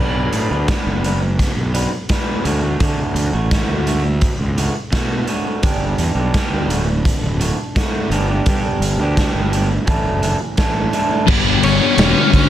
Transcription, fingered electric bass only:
0.00 0.27 B1 medium
0.33 0.47 A2 medium
0.51 0.65 D2 medium
0.86 1.44 F#1 medium
1.57 1.86 B1 medium
2.45 2.74 D2 medium
2.81 2.95 D3 medium
3.14 3.29 D2 medium
3.33 3.62 A1 medium
3.67 4.26 D2 medium
4.39 4.68 C#2 medium
4.92 5.21 B2 medium
5.63 5.92 G1 medium
5.98 6.13 E2 medium
6.15 6.30 B1 medium
6.50 6.65 D2 medium
6.68 7.12 D1 medium
7.21 7.51 D1 medium
8.10 8.39 G1 medium
8.47 8.61 G2 medium
8.80 8.95 G1 medium
8.97 9.27 D2 medium
9.34 9.77 G1 medium
9.87 10.01 A1 medium
10.04 10.33 F#1 medium
10.58 10.87 A1 medium
11.28 11.57 G1 loud
11.64 11.78 G1 medium
11.98 12.12 E1 medium
12.33 12.49 D2 medium

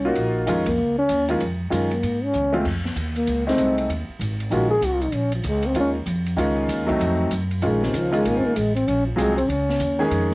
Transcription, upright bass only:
0.00 0.15 C2 medium
0.16 0.46 A#1 medium
0.47 0.77 F2 medium
0.78 1.08 C#2 medium
1.10 1.40 D#2 medium
1.41 1.71 F2 medium
1.72 2.02 F#2 medium
2.03 2.33 G#2 medium
2.34 2.64 C#2 medium
2.65 2.95 F2 medium
2.96 3.26 D#2 medium
3.27 3.57 C#2 medium
3.58 3.88 C2 medium
3.89 4.07 D#2 medium
4.09 muted upright bass stroke soft
4.19 4.50 G#1 medium
4.50 4.81 A#1 medium
4.81 5.12 C2 medium
5.12 5.43 A#1 medium
5.44 5.74 C#2 medium
5.74 6.05 D#2 medium
6.06 6.36 F2 medium
6.36 6.67 C#2 medium
6.68 6.98 D#2 medium
6.99 7.30 F2 medium
7.31 7.61 F#2 medium
7.62 7.93 A#1 medium
7.93 8.24 C#2 medium
8.25 8.43 G#1 medium
8.44 muted upright bass stroke soft
8.56 8.86 A1 medium
8.88 9.17 A#1 medium
9.17 9.48 C2 medium
9.49 9.79 C#2 medium
9.80 10.10 D#2 medium
10.11 10.34 F2 medium

